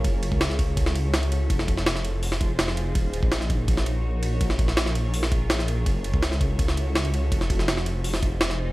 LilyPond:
<<
  \new Staff \with { instrumentName = "Ambient pad" } { \time 4/4 \key ges \lydian \tempo 4 = 165 << { <a' des''>1 | <aes' c''>1 | <bes' des''>1~ | <bes' des''>1 |
<a' des''>1 | <aes' c''>1 | } \\ { <fes' ges'>1 | <ees' f'>1 | <ees' ges'>1 | <f' aes'>1 |
<fes' ges'>1 | <ees' f'>1 | } >> }
  \new Staff \with { instrumentName = "Detuned saw bass" } { \clef bass \time 4/4 \key ges \lydian ges,,8. des,2.~ des,16 | f,,1 | ees,,8. bes,,2.~ bes,,16 | bes,,1 |
ges,,8. des,2.~ des,16 | f,,1 | }
  \new DrumStaff \with { instrumentName = "Drums" } \drummode { \time 4/4 <bd cymr>8 cymr16 bd16 <cymr sn>16 sn16 <bd cymr>8 <bd cymr>16 sn16 cymr8 <cymr sn>16 cymr16 cymr8 | <bd cymr>16 sn16 <bd cymr>16 sn16 <cymr sn>16 sn16 cymr8 hho16 sn16 <bd cymr>8 <cymr sn>16 sn16 cymr8 | <bd cymr>8 cymr16 bd16 <cymr sn>16 sn16 <bd cymr>8 <bd cymr>16 sn16 cymr8 r8 cymr8 | <bd cymr>16 sn16 <bd cymr>16 sn16 <cymr sn>16 sn16 cymr8 hho16 sn16 <bd cymr>8 <cymr sn>16 sn16 cymr8 |
<bd cymr>8 cymr16 bd16 <cymr sn>16 sn16 <bd cymr>8 <bd cymr>16 sn16 cymr8 <cymr sn>16 cymr16 cymr8 | <bd cymr>16 sn16 <bd cymr>16 sn16 <cymr sn>16 sn16 cymr8 hho16 sn16 <bd cymr>8 <cymr sn>16 sn8. | }
>>